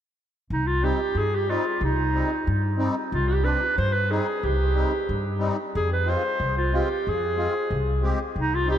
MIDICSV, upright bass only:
0, 0, Header, 1, 2, 480
1, 0, Start_track
1, 0, Key_signature, -3, "minor"
1, 0, Tempo, 654308
1, 370, Time_signature, 2, 2, 24, 8
1, 6442, End_track
2, 0, Start_track
2, 0, Title_t, "Upright bass"
2, 0, Program_c, 0, 32
2, 369, Note_on_c, 0, 36, 76
2, 658, Note_off_c, 0, 36, 0
2, 842, Note_on_c, 0, 43, 76
2, 1133, Note_off_c, 0, 43, 0
2, 1326, Note_on_c, 0, 36, 76
2, 1615, Note_off_c, 0, 36, 0
2, 1814, Note_on_c, 0, 43, 84
2, 2101, Note_off_c, 0, 43, 0
2, 2291, Note_on_c, 0, 36, 79
2, 2579, Note_off_c, 0, 36, 0
2, 2773, Note_on_c, 0, 43, 89
2, 3060, Note_off_c, 0, 43, 0
2, 3252, Note_on_c, 0, 36, 77
2, 3540, Note_off_c, 0, 36, 0
2, 3734, Note_on_c, 0, 43, 76
2, 4021, Note_off_c, 0, 43, 0
2, 4220, Note_on_c, 0, 41, 83
2, 4505, Note_off_c, 0, 41, 0
2, 4694, Note_on_c, 0, 36, 77
2, 4980, Note_off_c, 0, 36, 0
2, 5186, Note_on_c, 0, 41, 76
2, 5469, Note_off_c, 0, 41, 0
2, 5652, Note_on_c, 0, 36, 75
2, 5940, Note_off_c, 0, 36, 0
2, 6130, Note_on_c, 0, 36, 70
2, 6418, Note_off_c, 0, 36, 0
2, 6442, End_track
0, 0, End_of_file